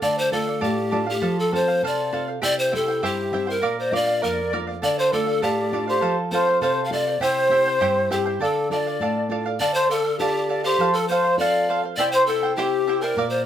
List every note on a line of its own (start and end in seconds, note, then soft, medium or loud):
0.02 0.61 D3 medium
0.02 0.31 A4 medium
0.02 0.31 D5 medium
0.02 0.20 D5 loud
0.02 0.32 F5 medium
0.18 0.32 C5 medium
0.31 0.80 A3 soft
0.31 0.80 D4 soft
0.31 0.81 F4 medium
0.31 0.47 A4 soft
0.31 0.65 A4 medium
0.31 0.47 D5 medium
0.31 0.46 F5 medium
0.47 0.60 D5 soft
0.47 0.61 F5 soft
0.61 1.20 A2 medium
0.61 1.08 G4 medium
0.61 0.90 A4 medium
0.61 0.91 D5 medium
0.61 0.91 F5 medium
0.91 1.16 A3 soft
0.91 1.17 D4 soft
0.91 1.16 F4 medium
0.91 1.07 A4 medium
0.91 1.06 D5 medium
0.91 1.05 F5 medium
1.06 1.41 G4 medium
1.06 1.21 D5 soft
1.06 1.21 F5 medium
1.22 1.81 F3 medium
1.22 1.51 A4 medium
1.22 1.52 C5 medium
1.22 1.52 F5 medium
1.39 1.54 A4 medium
1.52 2.00 C4 soft
1.52 2.01 F4 soft
1.52 1.68 A4 medium
1.52 2.01 A4 soft
1.52 1.67 C5 medium
1.52 1.82 C5 medium
1.52 1.67 F5 medium
1.68 1.83 C5 soft
1.68 1.83 F5 medium
1.83 2.41 C3 medium
1.83 2.11 A4 medium
1.83 2.11 C5 medium
1.83 2.12 F5 medium
1.87 2.27 D5 loud
2.12 2.37 C4 soft
2.12 2.37 F4 soft
2.12 2.28 A4 medium
2.12 2.37 A4 medium
2.12 2.27 C5 medium
2.12 2.27 F5 medium
2.28 2.41 C5 soft
2.28 2.42 F5 medium
2.42 3.01 C3 medium
2.42 2.71 E4 medium
2.42 2.72 G4 medium
2.42 2.71 C5 medium
2.42 2.57 D5 loud
2.42 2.71 E5 medium
2.42 2.72 G5 medium
2.59 2.77 C5 loud
2.72 3.21 C4 medium
2.72 2.88 E4 medium
2.72 3.21 E4 soft
2.72 3.21 G4 medium
2.72 3.04 A4 medium
2.72 2.87 C5 medium
2.72 2.87 E5 medium
2.72 2.87 G5 medium
2.88 3.02 E4 soft
2.88 3.02 C5 medium
2.88 3.03 G5 soft
3.02 3.61 G2 medium
3.02 3.32 E4 medium
3.02 3.33 G4 medium
3.02 3.51 G4 medium
3.02 3.33 C5 medium
3.02 3.32 E5 medium
3.02 3.33 G5 medium
3.32 3.56 C4 soft
3.32 3.57 E4 soft
3.32 3.48 E4 medium
3.32 3.57 G4 medium
3.32 3.47 C5 medium
3.32 3.48 E5 medium
3.32 3.46 G5 medium
3.47 3.63 E4 soft
3.47 3.79 A#4 medium
3.47 3.61 C5 soft
3.47 3.62 G5 soft
3.62 4.21 A#2 medium
3.62 3.91 A#4 medium
3.62 3.92 D5 medium
3.62 3.92 F5 medium
3.78 3.97 C5 medium
3.78 3.95 D5 medium
3.92 4.40 A#3 medium
3.92 4.40 D4 soft
3.92 4.40 F4 soft
3.92 4.07 A#4 medium
3.92 4.07 D5 medium
3.92 4.25 D5 loud
3.92 4.06 F5 medium
3.92 4.25 F5 medium
4.07 4.21 D5 soft
4.07 4.22 F5 medium
4.22 4.81 F2 medium
4.22 4.51 A#4 medium
4.22 4.59 A#4 medium
4.22 4.52 D5 medium
4.22 4.68 D5 medium
4.22 4.52 F5 medium
4.52 4.77 A#3 soft
4.52 4.77 D4 soft
4.52 4.77 F4 medium
4.52 4.67 A#4 medium
4.52 4.67 D5 medium
4.52 4.66 F5 medium
4.67 4.82 D5 soft
4.67 4.82 F5 medium
4.82 5.41 D3 medium
4.82 5.11 A4 medium
4.82 5.12 D5 medium
4.82 5.00 D5 medium
4.82 5.00 D5 loud
4.82 5.13 F5 medium
4.98 5.15 C5 medium
4.98 5.14 C5 medium
5.12 5.60 A3 soft
5.12 5.60 D4 soft
5.12 5.61 F4 medium
5.12 5.27 A4 medium
5.12 5.45 A4 medium
5.12 5.27 D5 medium
5.12 5.26 F5 medium
5.27 5.41 D5 soft
5.27 5.42 F5 medium
5.42 6.00 A2 medium
5.42 5.87 G4 medium
5.42 5.72 A4 medium
5.42 5.72 D5 medium
5.42 5.87 D5 medium
5.42 5.73 F5 medium
5.72 5.96 A3 medium
5.72 5.96 D4 soft
5.72 5.96 F4 medium
5.72 5.87 A4 medium
5.72 5.87 D5 medium
5.72 5.86 F5 medium
5.88 6.16 G4 medium
5.88 6.15 C5 medium
5.88 6.01 D5 soft
5.88 6.01 F5 medium
6.01 6.60 F3 medium
6.01 6.31 A4 medium
6.01 6.32 C5 medium
6.01 6.32 F5 medium
6.31 6.79 C4 soft
6.31 6.80 F4 soft
6.31 6.80 A4 medium
6.31 6.47 A4 medium
6.31 6.60 C5 medium
6.31 6.47 C5 medium
6.31 6.46 F5 medium
6.47 6.61 C5 soft
6.47 6.62 F5 medium
6.61 7.19 C3 medium
6.61 6.91 A4 medium
6.61 6.83 C5 medium
6.61 6.84 C5 medium
6.61 6.92 C5 medium
6.61 6.92 F5 medium
6.85 6.94 F5 medium
6.90 7.15 C4 soft
6.90 7.15 F4 soft
6.90 7.15 A4 soft
6.90 7.07 A4 medium
6.90 7.06 C5 medium
6.90 7.24 D5 medium
6.90 6.98 E5 medium
6.90 7.05 F5 medium
6.97 7.24 D5 medium
7.07 7.20 C5 soft
7.07 7.21 F5 soft
7.20 7.79 C3 medium
7.20 7.50 E4 medium
7.20 7.51 G4 medium
7.20 8.11 C5 loud
7.20 7.51 C5 medium
7.20 8.11 C5 medium
7.20 7.50 E5 medium
7.20 7.52 G5 medium
7.49 7.98 C4 medium
7.49 7.98 E4 soft
7.49 7.66 E4 medium
7.49 7.99 G4 medium
7.49 7.67 C5 medium
7.49 7.66 E5 medium
7.49 7.66 G5 medium
7.67 7.80 E4 soft
7.67 7.80 C5 soft
7.67 7.81 G5 medium
7.81 8.39 G2 medium
7.81 8.10 E4 medium
7.81 8.11 G4 medium
7.81 8.10 C5 medium
7.81 8.09 E5 medium
7.81 8.10 G5 medium
8.10 8.34 C4 soft
8.10 8.34 E4 soft
8.10 8.26 E4 medium
8.10 8.35 G4 medium
8.10 8.39 G4 medium
8.10 8.16 A4 medium
8.10 8.25 C5 medium
8.10 8.26 E5 medium
8.10 8.24 G5 medium
8.15 8.39 G4 medium
8.26 8.40 E4 soft
8.26 8.41 C5 soft
8.26 8.41 G5 medium
8.40 8.98 D3 medium
8.40 8.70 A4 medium
8.40 8.69 A4 medium
8.40 8.70 A4 medium
8.40 8.70 D5 medium
8.40 8.71 F5 medium
8.70 9.18 D4 soft
8.70 9.18 F4 soft
8.70 9.18 A4 medium
8.70 8.86 A4 medium
8.70 9.27 D5 medium
8.70 8.86 D5 medium
8.70 8.76 E5 medium
8.70 8.86 F5 medium
8.75 9.27 D5 medium
8.87 9.01 D5 soft
8.87 9.01 F5 soft
9.00 9.58 A2 medium
9.00 9.29 A4 medium
9.00 9.30 D5 medium
9.00 9.30 F5 medium
9.29 9.53 D4 soft
9.29 9.53 F4 soft
9.29 9.54 A4 medium
9.29 9.45 A4 medium
9.29 9.46 D5 medium
9.29 9.44 F5 medium
9.46 9.60 D5 soft
9.46 9.60 F5 medium
9.59 10.76 D3 medium
9.59 9.88 A4 medium
9.59 9.76 D5 medium
9.59 9.76 D5 loud
9.59 9.90 D5 medium
9.59 9.90 F5 medium
9.74 9.92 C5 loud
9.74 9.89 C5 medium
9.89 10.05 A4 medium
9.89 10.21 A4 medium
9.89 9.95 C5 medium
9.89 10.05 D5 medium
9.89 10.03 F5 medium
9.94 10.21 A4 medium
10.05 10.19 D5 soft
10.05 10.20 F5 medium
10.19 10.77 D4 soft
10.19 10.77 F4 soft
10.19 10.63 G4 medium
10.19 10.77 A4 medium
10.19 10.48 A4 medium
10.19 10.64 D5 medium
10.19 10.48 D5 medium
10.19 10.49 F5 medium
10.49 10.64 A4 medium
10.49 10.64 D5 medium
10.49 10.63 F5 medium
10.64 10.95 G4 medium
10.64 10.97 C5 medium
10.64 10.79 D5 soft
10.64 10.79 F5 soft
10.78 11.94 F3 medium
10.78 11.09 A4 medium
10.78 11.09 C5 medium
10.78 11.10 F5 medium
10.93 11.10 A4 medium
11.08 11.24 A4 medium
11.08 11.38 C5 loud
11.08 11.24 C5 medium
11.08 11.13 C#5 medium
11.08 11.23 F5 medium
11.12 11.37 C5 medium
11.24 11.39 C5 soft
11.24 11.39 F5 medium
11.37 11.96 C4 soft
11.37 11.96 F4 soft
11.37 11.96 A4 medium
11.37 11.68 A4 medium
11.37 11.68 C5 medium
11.37 11.80 D5 loud
11.37 11.80 F5 medium
11.37 11.69 F5 medium
11.69 11.84 A4 medium
11.69 11.83 C5 medium
11.69 11.82 F5 medium
11.83 11.98 C5 soft
11.83 11.98 F5 medium
11.96 13.13 C3 medium
11.96 12.28 E4 medium
11.96 12.28 G4 medium
11.96 12.28 C5 medium
11.96 12.11 D5 loud
11.96 12.27 E5 medium
11.96 12.12 G5 loud
11.96 12.28 G5 medium
12.12 12.26 C5 loud
12.12 12.27 C5 medium
12.26 12.43 E4 medium
12.26 12.55 A4 medium
12.26 12.43 C5 medium
12.26 12.43 E5 medium
12.26 12.42 G5 medium
12.43 12.57 E4 medium
12.43 12.57 C5 soft
12.43 12.58 G5 medium
12.56 13.15 C4 medium
12.56 13.15 E4 soft
12.56 12.87 E4 medium
12.56 13.03 G4 medium
12.56 13.15 G4 medium
12.56 12.87 G4 medium
12.56 12.88 C5 medium
12.56 12.86 E5 medium
12.56 12.88 G5 medium
12.87 13.03 E4 medium
12.87 13.02 C5 medium
12.87 13.02 E5 medium
12.87 13.01 G5 medium
13.01 13.18 E4 soft
13.01 13.29 A#4 medium
13.01 13.17 C5 soft
13.01 13.30 D5 medium
13.01 13.17 G5 soft
13.16 13.46 A#2 medium
13.16 13.46 A#4 medium
13.16 13.46 D5 medium
13.16 13.46 F5 medium
13.30 13.44 C5 medium
13.30 13.45 D5 medium